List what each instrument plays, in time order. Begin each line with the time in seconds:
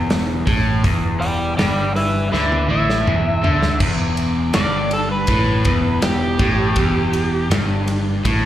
Already playing: picked electric bass E1, overdriven electric guitar E2
0.10 snare, open hi-hat
0.47 picked electric bass A1, overdriven electric guitar A2, kick, open hi-hat
0.84 picked electric bass E1, overdriven electric guitar E2, kick, open hi-hat
1.20 electric slide guitar D5 G5, open hi-hat
1.57 picked electric bass G1, overdriven electric guitar G2, electric slide guitar D5 G5, snare, open hi-hat
1.96 electric slide guitar B4 E5, open hi-hat
2.32 picked electric bass D2, overdriven electric guitar D3, electric slide guitar B4 E5, snare
2.52 high tom
2.69 picked electric bass A1, overdriven electric guitar A2, electric slide guitar E5
2.90 snare
3.06 picked electric bass E1, overdriven electric guitar E2, mid tom
3.43 picked electric bass D2, overdriven electric guitar D3, floor tom
3.62 snare
3.80 picked electric bass E1, overdriven electric guitar E2, kick, crash
4.17 ride
4.54 picked electric bass G1, overdriven electric guitar G2, electric slide guitar D5, snare, ride
4.91 electric slide guitar A4, ride
5.12 electric slide guitar B4
5.27 picked electric bass A1, overdriven electric guitar A2, kick, ride
5.65 picked electric bass E1, overdriven electric guitar E2, kick, ride
6.02 electric slide guitar G4, snare, ride
6.39 picked electric bass A1, overdriven electric guitar A2, kick, ride
6.76 picked electric bass E1, overdriven electric guitar E2, kick, ride
7.13 ride
7.50 picked electric bass G1, overdriven electric guitar G2, snare, ride
7.88 ride
8.25 picked electric bass A1, overdriven electric guitar A2, kick, ride